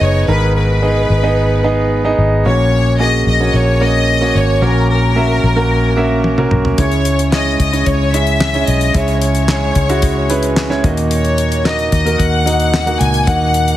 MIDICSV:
0, 0, Header, 1, 5, 480
1, 0, Start_track
1, 0, Tempo, 541516
1, 250, Time_signature, 4, 2, 24, 8
1, 12204, End_track
2, 0, Start_track
2, 0, Title_t, "Violin section"
2, 0, Program_c, 0, 48
2, 17, Note_on_c, 0, 73, 75
2, 246, Note_on_c, 0, 71, 80
2, 253, Note_off_c, 0, 73, 0
2, 471, Note_off_c, 0, 71, 0
2, 493, Note_on_c, 0, 71, 77
2, 1898, Note_off_c, 0, 71, 0
2, 2179, Note_on_c, 0, 73, 91
2, 2623, Note_off_c, 0, 73, 0
2, 2659, Note_on_c, 0, 75, 92
2, 2893, Note_off_c, 0, 75, 0
2, 2904, Note_on_c, 0, 75, 77
2, 3122, Note_off_c, 0, 75, 0
2, 3148, Note_on_c, 0, 73, 79
2, 3380, Note_off_c, 0, 73, 0
2, 3384, Note_on_c, 0, 75, 86
2, 3858, Note_off_c, 0, 75, 0
2, 3867, Note_on_c, 0, 73, 76
2, 4100, Note_off_c, 0, 73, 0
2, 4106, Note_on_c, 0, 70, 75
2, 4340, Note_off_c, 0, 70, 0
2, 4351, Note_on_c, 0, 70, 81
2, 5747, Note_off_c, 0, 70, 0
2, 6014, Note_on_c, 0, 73, 77
2, 6460, Note_off_c, 0, 73, 0
2, 6499, Note_on_c, 0, 75, 82
2, 6731, Note_off_c, 0, 75, 0
2, 6742, Note_on_c, 0, 75, 73
2, 6961, Note_off_c, 0, 75, 0
2, 6979, Note_on_c, 0, 73, 81
2, 7215, Note_on_c, 0, 76, 88
2, 7216, Note_off_c, 0, 73, 0
2, 7693, Note_off_c, 0, 76, 0
2, 7696, Note_on_c, 0, 75, 76
2, 7934, Note_off_c, 0, 75, 0
2, 7941, Note_on_c, 0, 73, 82
2, 8165, Note_off_c, 0, 73, 0
2, 8176, Note_on_c, 0, 73, 80
2, 9577, Note_off_c, 0, 73, 0
2, 9854, Note_on_c, 0, 73, 73
2, 10298, Note_off_c, 0, 73, 0
2, 10329, Note_on_c, 0, 75, 74
2, 10554, Note_off_c, 0, 75, 0
2, 10565, Note_on_c, 0, 75, 72
2, 10790, Note_off_c, 0, 75, 0
2, 10803, Note_on_c, 0, 78, 86
2, 11523, Note_on_c, 0, 80, 89
2, 11525, Note_off_c, 0, 78, 0
2, 11763, Note_on_c, 0, 78, 94
2, 11765, Note_off_c, 0, 80, 0
2, 12204, Note_off_c, 0, 78, 0
2, 12204, End_track
3, 0, Start_track
3, 0, Title_t, "Grand piano"
3, 0, Program_c, 1, 0
3, 0, Control_c, 1, 64, 127
3, 0, Note_on_c, 1, 44, 50
3, 0, Note_on_c, 1, 51, 49
3, 0, Note_on_c, 1, 59, 58
3, 0, Note_on_c, 1, 63, 55
3, 0, Note_on_c, 1, 68, 52
3, 0, Note_on_c, 1, 73, 62
3, 0, Note_on_c, 1, 75, 68
3, 0, Note_on_c, 1, 78, 64
3, 216, Note_off_c, 1, 59, 0
3, 217, Note_off_c, 1, 63, 0
3, 218, Note_off_c, 1, 68, 0
3, 219, Note_off_c, 1, 75, 0
3, 244, Note_on_c, 1, 59, 55
3, 249, Note_off_c, 1, 44, 0
3, 249, Note_off_c, 1, 51, 0
3, 249, Note_on_c, 1, 44, 47
3, 249, Note_on_c, 1, 51, 51
3, 249, Note_on_c, 1, 63, 53
3, 250, Note_on_c, 1, 68, 52
3, 251, Note_on_c, 1, 70, 65
3, 687, Note_off_c, 1, 59, 0
3, 690, Note_off_c, 1, 63, 0
3, 690, Note_off_c, 1, 68, 0
3, 691, Note_off_c, 1, 70, 0
3, 724, Note_on_c, 1, 59, 57
3, 728, Note_on_c, 1, 63, 52
3, 730, Note_on_c, 1, 68, 51
3, 732, Note_on_c, 1, 75, 64
3, 935, Note_off_c, 1, 44, 0
3, 935, Note_off_c, 1, 51, 0
3, 1058, Note_off_c, 1, 59, 0
3, 1059, Note_off_c, 1, 63, 0
3, 1061, Note_off_c, 1, 68, 0
3, 1061, Note_off_c, 1, 75, 0
3, 1091, Note_on_c, 1, 59, 74
3, 1092, Note_on_c, 1, 63, 64
3, 1094, Note_on_c, 1, 68, 65
3, 1096, Note_on_c, 1, 75, 72
3, 1421, Note_off_c, 1, 59, 0
3, 1422, Note_off_c, 1, 63, 0
3, 1423, Note_off_c, 1, 68, 0
3, 1423, Note_off_c, 1, 75, 0
3, 1450, Note_on_c, 1, 59, 71
3, 1452, Note_on_c, 1, 63, 68
3, 1454, Note_on_c, 1, 68, 67
3, 1456, Note_on_c, 1, 75, 78
3, 1781, Note_off_c, 1, 59, 0
3, 1781, Note_off_c, 1, 63, 0
3, 1783, Note_off_c, 1, 68, 0
3, 1784, Note_off_c, 1, 75, 0
3, 1811, Note_on_c, 1, 59, 77
3, 1814, Note_on_c, 1, 63, 69
3, 1816, Note_on_c, 1, 68, 68
3, 1820, Note_on_c, 1, 75, 81
3, 2142, Note_off_c, 1, 59, 0
3, 2143, Note_off_c, 1, 63, 0
3, 2144, Note_off_c, 1, 68, 0
3, 2146, Note_off_c, 1, 75, 0
3, 2175, Note_on_c, 1, 58, 58
3, 2176, Note_on_c, 1, 46, 54
3, 2176, Note_on_c, 1, 61, 55
3, 2177, Note_on_c, 1, 66, 55
3, 2180, Note_off_c, 1, 73, 0
3, 2180, Note_on_c, 1, 73, 69
3, 2183, Control_c, 1, 64, 0
3, 2188, Note_off_c, 1, 78, 0
3, 2343, Control_c, 1, 64, 127
3, 2613, Note_off_c, 1, 58, 0
3, 2614, Note_off_c, 1, 61, 0
3, 2615, Note_off_c, 1, 66, 0
3, 2616, Note_off_c, 1, 73, 0
3, 2654, Note_on_c, 1, 58, 58
3, 2656, Note_on_c, 1, 61, 56
3, 2658, Note_on_c, 1, 66, 57
3, 2660, Note_on_c, 1, 68, 64
3, 2859, Note_off_c, 1, 46, 0
3, 2983, Note_off_c, 1, 58, 0
3, 2984, Note_off_c, 1, 61, 0
3, 2985, Note_off_c, 1, 66, 0
3, 2986, Note_off_c, 1, 68, 0
3, 3014, Note_on_c, 1, 58, 58
3, 3016, Note_on_c, 1, 61, 52
3, 3017, Note_on_c, 1, 66, 54
3, 3020, Note_on_c, 1, 73, 64
3, 3343, Note_off_c, 1, 58, 0
3, 3344, Note_off_c, 1, 61, 0
3, 3345, Note_off_c, 1, 66, 0
3, 3346, Note_off_c, 1, 73, 0
3, 3376, Note_on_c, 1, 58, 56
3, 3378, Note_on_c, 1, 61, 51
3, 3380, Note_on_c, 1, 66, 55
3, 3383, Note_on_c, 1, 73, 64
3, 3704, Note_off_c, 1, 58, 0
3, 3705, Note_off_c, 1, 61, 0
3, 3706, Note_off_c, 1, 66, 0
3, 3708, Note_off_c, 1, 73, 0
3, 3730, Note_on_c, 1, 58, 61
3, 3734, Note_on_c, 1, 61, 57
3, 3735, Note_on_c, 1, 66, 57
3, 3738, Note_on_c, 1, 73, 70
3, 4061, Note_off_c, 1, 58, 0
3, 4063, Note_off_c, 1, 61, 0
3, 4064, Note_off_c, 1, 66, 0
3, 4065, Note_off_c, 1, 73, 0
3, 4091, Note_on_c, 1, 58, 59
3, 4092, Note_on_c, 1, 61, 54
3, 4094, Note_on_c, 1, 46, 51
3, 4095, Note_on_c, 1, 66, 56
3, 4097, Note_on_c, 1, 73, 62
3, 4532, Note_off_c, 1, 58, 0
3, 4532, Note_off_c, 1, 61, 0
3, 4534, Note_off_c, 1, 66, 0
3, 4535, Note_off_c, 1, 73, 0
3, 4572, Note_on_c, 1, 58, 59
3, 4573, Note_on_c, 1, 61, 55
3, 4576, Note_on_c, 1, 66, 54
3, 4577, Note_on_c, 1, 76, 65
3, 4778, Note_off_c, 1, 46, 0
3, 4903, Note_off_c, 1, 58, 0
3, 4903, Note_off_c, 1, 61, 0
3, 4905, Note_off_c, 1, 66, 0
3, 4905, Note_off_c, 1, 76, 0
3, 4930, Note_on_c, 1, 58, 67
3, 4931, Note_on_c, 1, 61, 63
3, 4934, Note_on_c, 1, 66, 61
3, 4935, Note_on_c, 1, 70, 74
3, 5261, Note_off_c, 1, 58, 0
3, 5262, Note_off_c, 1, 61, 0
3, 5263, Note_off_c, 1, 66, 0
3, 5264, Note_off_c, 1, 70, 0
3, 5288, Note_on_c, 1, 58, 69
3, 5290, Note_on_c, 1, 61, 63
3, 5290, Note_on_c, 1, 66, 61
3, 5294, Note_on_c, 1, 76, 74
3, 5620, Note_off_c, 1, 58, 0
3, 5621, Note_off_c, 1, 61, 0
3, 5622, Note_off_c, 1, 66, 0
3, 5624, Note_off_c, 1, 76, 0
3, 5653, Note_on_c, 1, 58, 68
3, 5655, Note_on_c, 1, 61, 62
3, 5658, Note_on_c, 1, 66, 64
3, 5661, Note_on_c, 1, 70, 76
3, 5983, Note_off_c, 1, 58, 0
3, 5984, Note_off_c, 1, 61, 0
3, 5985, Note_off_c, 1, 66, 0
3, 5987, Note_off_c, 1, 70, 0
3, 6014, Note_on_c, 1, 56, 56
3, 6015, Note_on_c, 1, 49, 46
3, 6016, Note_on_c, 1, 61, 54
3, 6018, Note_on_c, 1, 64, 54
3, 6020, Note_on_c, 1, 73, 62
3, 6023, Control_c, 1, 64, 0
3, 6154, Control_c, 1, 64, 127
3, 6453, Note_off_c, 1, 56, 0
3, 6454, Note_off_c, 1, 61, 0
3, 6455, Note_off_c, 1, 64, 0
3, 6456, Note_off_c, 1, 73, 0
3, 6487, Note_on_c, 1, 56, 60
3, 6491, Note_on_c, 1, 61, 53
3, 6491, Note_on_c, 1, 64, 52
3, 6495, Note_on_c, 1, 73, 62
3, 6698, Note_off_c, 1, 49, 0
3, 6820, Note_off_c, 1, 56, 0
3, 6821, Note_off_c, 1, 61, 0
3, 6822, Note_off_c, 1, 64, 0
3, 6823, Note_off_c, 1, 73, 0
3, 6847, Note_on_c, 1, 56, 58
3, 6849, Note_on_c, 1, 61, 53
3, 6851, Note_on_c, 1, 64, 51
3, 6851, Note_on_c, 1, 73, 63
3, 7179, Note_off_c, 1, 56, 0
3, 7180, Note_off_c, 1, 61, 0
3, 7181, Note_off_c, 1, 64, 0
3, 7181, Note_off_c, 1, 73, 0
3, 7210, Note_on_c, 1, 56, 60
3, 7213, Note_on_c, 1, 61, 55
3, 7214, Note_on_c, 1, 64, 54
3, 7215, Note_on_c, 1, 73, 64
3, 7541, Note_off_c, 1, 56, 0
3, 7542, Note_off_c, 1, 61, 0
3, 7543, Note_off_c, 1, 64, 0
3, 7543, Note_off_c, 1, 73, 0
3, 7571, Note_on_c, 1, 56, 59
3, 7573, Note_on_c, 1, 64, 57
3, 7574, Note_on_c, 1, 61, 55
3, 7577, Note_on_c, 1, 73, 67
3, 7901, Note_off_c, 1, 56, 0
3, 7902, Note_off_c, 1, 64, 0
3, 7903, Note_off_c, 1, 61, 0
3, 7904, Note_off_c, 1, 73, 0
3, 7926, Note_on_c, 1, 56, 60
3, 7927, Note_on_c, 1, 61, 53
3, 7929, Note_on_c, 1, 49, 52
3, 7930, Note_on_c, 1, 64, 55
3, 7932, Note_on_c, 1, 76, 62
3, 8368, Note_off_c, 1, 56, 0
3, 8369, Note_off_c, 1, 61, 0
3, 8370, Note_off_c, 1, 64, 0
3, 8371, Note_off_c, 1, 76, 0
3, 8408, Note_on_c, 1, 56, 59
3, 8409, Note_on_c, 1, 61, 53
3, 8411, Note_on_c, 1, 64, 53
3, 8414, Note_on_c, 1, 68, 65
3, 8614, Note_off_c, 1, 49, 0
3, 8739, Note_off_c, 1, 56, 0
3, 8740, Note_off_c, 1, 61, 0
3, 8740, Note_off_c, 1, 64, 0
3, 8742, Note_off_c, 1, 68, 0
3, 8766, Note_on_c, 1, 56, 68
3, 8768, Note_on_c, 1, 61, 64
3, 8770, Note_on_c, 1, 64, 62
3, 8771, Note_on_c, 1, 66, 79
3, 9098, Note_off_c, 1, 56, 0
3, 9099, Note_off_c, 1, 61, 0
3, 9100, Note_off_c, 1, 64, 0
3, 9101, Note_off_c, 1, 66, 0
3, 9126, Note_on_c, 1, 61, 63
3, 9127, Note_on_c, 1, 56, 69
3, 9129, Note_on_c, 1, 64, 64
3, 9130, Note_on_c, 1, 71, 78
3, 9458, Note_off_c, 1, 56, 0
3, 9458, Note_off_c, 1, 61, 0
3, 9459, Note_off_c, 1, 64, 0
3, 9460, Note_off_c, 1, 71, 0
3, 9482, Note_on_c, 1, 56, 74
3, 9482, Note_on_c, 1, 61, 71
3, 9486, Note_on_c, 1, 64, 69
3, 9486, Note_on_c, 1, 73, 82
3, 9601, Note_on_c, 1, 58, 68
3, 9603, Note_on_c, 1, 46, 59
3, 9604, Note_on_c, 1, 63, 70
3, 9605, Note_on_c, 1, 66, 66
3, 9606, Note_off_c, 1, 56, 0
3, 9606, Note_off_c, 1, 61, 0
3, 9608, Note_off_c, 1, 64, 0
3, 9608, Note_off_c, 1, 73, 0
3, 9609, Note_on_c, 1, 75, 78
3, 9621, Control_c, 1, 64, 0
3, 9766, Control_c, 1, 64, 127
3, 10265, Note_off_c, 1, 58, 0
3, 10266, Note_off_c, 1, 63, 0
3, 10267, Note_off_c, 1, 66, 0
3, 10268, Note_off_c, 1, 75, 0
3, 10291, Note_off_c, 1, 46, 0
3, 10327, Note_on_c, 1, 58, 61
3, 10327, Note_on_c, 1, 63, 57
3, 10330, Note_on_c, 1, 66, 55
3, 10333, Note_on_c, 1, 75, 71
3, 10657, Note_off_c, 1, 58, 0
3, 10658, Note_off_c, 1, 63, 0
3, 10659, Note_off_c, 1, 66, 0
3, 10660, Note_off_c, 1, 75, 0
3, 10684, Note_on_c, 1, 58, 61
3, 10685, Note_on_c, 1, 63, 55
3, 10688, Note_on_c, 1, 66, 52
3, 10689, Note_on_c, 1, 70, 64
3, 11016, Note_off_c, 1, 58, 0
3, 11016, Note_off_c, 1, 63, 0
3, 11018, Note_off_c, 1, 66, 0
3, 11018, Note_off_c, 1, 70, 0
3, 11041, Note_on_c, 1, 58, 64
3, 11042, Note_on_c, 1, 63, 58
3, 11043, Note_on_c, 1, 66, 53
3, 11047, Note_on_c, 1, 75, 66
3, 11374, Note_off_c, 1, 58, 0
3, 11375, Note_off_c, 1, 63, 0
3, 11375, Note_off_c, 1, 66, 0
3, 11377, Note_off_c, 1, 75, 0
3, 11401, Note_on_c, 1, 58, 65
3, 11404, Note_on_c, 1, 63, 58
3, 11406, Note_on_c, 1, 66, 58
3, 11408, Note_on_c, 1, 78, 69
3, 11526, Note_on_c, 1, 46, 50
3, 11734, Note_off_c, 1, 58, 0
3, 11735, Note_off_c, 1, 63, 0
3, 11736, Note_off_c, 1, 66, 0
3, 11737, Note_off_c, 1, 78, 0
3, 11763, Note_on_c, 1, 58, 57
3, 11765, Note_on_c, 1, 63, 55
3, 11769, Note_on_c, 1, 66, 56
3, 11770, Note_on_c, 1, 78, 62
3, 12204, Note_off_c, 1, 46, 0
3, 12204, Note_off_c, 1, 58, 0
3, 12204, Note_off_c, 1, 63, 0
3, 12204, Note_off_c, 1, 66, 0
3, 12204, Note_off_c, 1, 78, 0
3, 12204, End_track
4, 0, Start_track
4, 0, Title_t, "Fingered electric bass"
4, 0, Program_c, 2, 33
4, 7, Note_on_c, 2, 30, 75
4, 232, Note_off_c, 2, 30, 0
4, 248, Note_on_c, 2, 32, 85
4, 934, Note_off_c, 2, 32, 0
4, 972, Note_on_c, 2, 32, 86
4, 1897, Note_off_c, 2, 32, 0
4, 1933, Note_on_c, 2, 32, 70
4, 2156, Note_off_c, 2, 32, 0
4, 2175, Note_on_c, 2, 34, 86
4, 2859, Note_off_c, 2, 34, 0
4, 2893, Note_on_c, 2, 34, 81
4, 3116, Note_off_c, 2, 34, 0
4, 3133, Note_on_c, 2, 34, 81
4, 3818, Note_off_c, 2, 34, 0
4, 3855, Note_on_c, 2, 32, 66
4, 4077, Note_off_c, 2, 32, 0
4, 4093, Note_on_c, 2, 34, 84
4, 4778, Note_off_c, 2, 34, 0
4, 4817, Note_on_c, 2, 34, 81
4, 5739, Note_off_c, 2, 34, 0
4, 5776, Note_on_c, 2, 35, 64
4, 5998, Note_off_c, 2, 35, 0
4, 6012, Note_on_c, 2, 37, 83
4, 6697, Note_off_c, 2, 37, 0
4, 6734, Note_on_c, 2, 37, 82
4, 6957, Note_off_c, 2, 37, 0
4, 6971, Note_on_c, 2, 37, 80
4, 7656, Note_off_c, 2, 37, 0
4, 7690, Note_on_c, 2, 35, 65
4, 7914, Note_off_c, 2, 35, 0
4, 7929, Note_on_c, 2, 37, 88
4, 8614, Note_off_c, 2, 37, 0
4, 8649, Note_on_c, 2, 37, 80
4, 9573, Note_off_c, 2, 37, 0
4, 9610, Note_on_c, 2, 39, 78
4, 10534, Note_off_c, 2, 39, 0
4, 10569, Note_on_c, 2, 39, 77
4, 10792, Note_off_c, 2, 39, 0
4, 10810, Note_on_c, 2, 39, 85
4, 11493, Note_off_c, 2, 39, 0
4, 11527, Note_on_c, 2, 37, 70
4, 11750, Note_off_c, 2, 37, 0
4, 11766, Note_on_c, 2, 39, 90
4, 12204, Note_off_c, 2, 39, 0
4, 12204, End_track
5, 0, Start_track
5, 0, Title_t, "Drums"
5, 5532, Note_on_c, 9, 48, 46
5, 5621, Note_off_c, 9, 48, 0
5, 5654, Note_on_c, 9, 47, 49
5, 5742, Note_off_c, 9, 47, 0
5, 5772, Note_on_c, 9, 45, 69
5, 5861, Note_off_c, 9, 45, 0
5, 5893, Note_on_c, 9, 43, 73
5, 5982, Note_off_c, 9, 43, 0
5, 6010, Note_on_c, 9, 42, 67
5, 6012, Note_on_c, 9, 36, 89
5, 6099, Note_off_c, 9, 42, 0
5, 6101, Note_off_c, 9, 36, 0
5, 6130, Note_on_c, 9, 42, 28
5, 6218, Note_off_c, 9, 42, 0
5, 6251, Note_on_c, 9, 42, 62
5, 6340, Note_off_c, 9, 42, 0
5, 6374, Note_on_c, 9, 42, 44
5, 6462, Note_off_c, 9, 42, 0
5, 6492, Note_on_c, 9, 38, 89
5, 6500, Note_on_c, 9, 39, 74
5, 6581, Note_off_c, 9, 38, 0
5, 6588, Note_off_c, 9, 39, 0
5, 6734, Note_on_c, 9, 36, 67
5, 6734, Note_on_c, 9, 42, 55
5, 6822, Note_off_c, 9, 36, 0
5, 6823, Note_off_c, 9, 42, 0
5, 6856, Note_on_c, 9, 42, 39
5, 6945, Note_off_c, 9, 42, 0
5, 6971, Note_on_c, 9, 42, 66
5, 6972, Note_on_c, 9, 36, 74
5, 7059, Note_off_c, 9, 42, 0
5, 7061, Note_off_c, 9, 36, 0
5, 7215, Note_on_c, 9, 42, 66
5, 7304, Note_off_c, 9, 42, 0
5, 7328, Note_on_c, 9, 42, 45
5, 7416, Note_off_c, 9, 42, 0
5, 7451, Note_on_c, 9, 38, 94
5, 7458, Note_on_c, 9, 39, 78
5, 7539, Note_off_c, 9, 38, 0
5, 7546, Note_off_c, 9, 39, 0
5, 7569, Note_on_c, 9, 42, 30
5, 7658, Note_off_c, 9, 42, 0
5, 7690, Note_on_c, 9, 42, 62
5, 7778, Note_off_c, 9, 42, 0
5, 7809, Note_on_c, 9, 42, 39
5, 7898, Note_off_c, 9, 42, 0
5, 7929, Note_on_c, 9, 42, 66
5, 7930, Note_on_c, 9, 36, 89
5, 8017, Note_off_c, 9, 42, 0
5, 8019, Note_off_c, 9, 36, 0
5, 8047, Note_on_c, 9, 42, 29
5, 8136, Note_off_c, 9, 42, 0
5, 8168, Note_on_c, 9, 42, 64
5, 8257, Note_off_c, 9, 42, 0
5, 8285, Note_on_c, 9, 42, 44
5, 8374, Note_off_c, 9, 42, 0
5, 8404, Note_on_c, 9, 38, 83
5, 8411, Note_on_c, 9, 39, 73
5, 8493, Note_off_c, 9, 38, 0
5, 8500, Note_off_c, 9, 39, 0
5, 8646, Note_on_c, 9, 42, 56
5, 8649, Note_on_c, 9, 36, 70
5, 8734, Note_off_c, 9, 42, 0
5, 8737, Note_off_c, 9, 36, 0
5, 8771, Note_on_c, 9, 42, 39
5, 8860, Note_off_c, 9, 42, 0
5, 8884, Note_on_c, 9, 42, 71
5, 8889, Note_on_c, 9, 36, 73
5, 8972, Note_off_c, 9, 42, 0
5, 8977, Note_off_c, 9, 36, 0
5, 9127, Note_on_c, 9, 42, 68
5, 9216, Note_off_c, 9, 42, 0
5, 9242, Note_on_c, 9, 42, 43
5, 9330, Note_off_c, 9, 42, 0
5, 9365, Note_on_c, 9, 38, 96
5, 9372, Note_on_c, 9, 39, 71
5, 9454, Note_off_c, 9, 38, 0
5, 9461, Note_off_c, 9, 39, 0
5, 9491, Note_on_c, 9, 38, 28
5, 9579, Note_off_c, 9, 38, 0
5, 9609, Note_on_c, 9, 36, 89
5, 9609, Note_on_c, 9, 42, 63
5, 9697, Note_off_c, 9, 36, 0
5, 9698, Note_off_c, 9, 42, 0
5, 9727, Note_on_c, 9, 42, 40
5, 9816, Note_off_c, 9, 42, 0
5, 9847, Note_on_c, 9, 42, 70
5, 9936, Note_off_c, 9, 42, 0
5, 9968, Note_on_c, 9, 42, 29
5, 10057, Note_off_c, 9, 42, 0
5, 10088, Note_on_c, 9, 42, 65
5, 10176, Note_off_c, 9, 42, 0
5, 10209, Note_on_c, 9, 42, 46
5, 10298, Note_off_c, 9, 42, 0
5, 10329, Note_on_c, 9, 38, 90
5, 10336, Note_on_c, 9, 39, 70
5, 10417, Note_off_c, 9, 38, 0
5, 10425, Note_off_c, 9, 39, 0
5, 10450, Note_on_c, 9, 42, 30
5, 10538, Note_off_c, 9, 42, 0
5, 10568, Note_on_c, 9, 42, 57
5, 10570, Note_on_c, 9, 36, 66
5, 10657, Note_off_c, 9, 42, 0
5, 10658, Note_off_c, 9, 36, 0
5, 10695, Note_on_c, 9, 42, 36
5, 10783, Note_off_c, 9, 42, 0
5, 10810, Note_on_c, 9, 36, 74
5, 10811, Note_on_c, 9, 42, 66
5, 10898, Note_off_c, 9, 36, 0
5, 10899, Note_off_c, 9, 42, 0
5, 11056, Note_on_c, 9, 42, 69
5, 11145, Note_off_c, 9, 42, 0
5, 11165, Note_on_c, 9, 42, 42
5, 11254, Note_off_c, 9, 42, 0
5, 11289, Note_on_c, 9, 38, 95
5, 11296, Note_on_c, 9, 39, 73
5, 11378, Note_off_c, 9, 38, 0
5, 11385, Note_off_c, 9, 39, 0
5, 11409, Note_on_c, 9, 42, 30
5, 11498, Note_off_c, 9, 42, 0
5, 11530, Note_on_c, 9, 42, 61
5, 11618, Note_off_c, 9, 42, 0
5, 11648, Note_on_c, 9, 42, 39
5, 11736, Note_off_c, 9, 42, 0
5, 11766, Note_on_c, 9, 36, 94
5, 11766, Note_on_c, 9, 42, 70
5, 11854, Note_off_c, 9, 42, 0
5, 11855, Note_off_c, 9, 36, 0
5, 12004, Note_on_c, 9, 42, 69
5, 12093, Note_off_c, 9, 42, 0
5, 12125, Note_on_c, 9, 42, 46
5, 12204, Note_off_c, 9, 42, 0
5, 12204, End_track
0, 0, End_of_file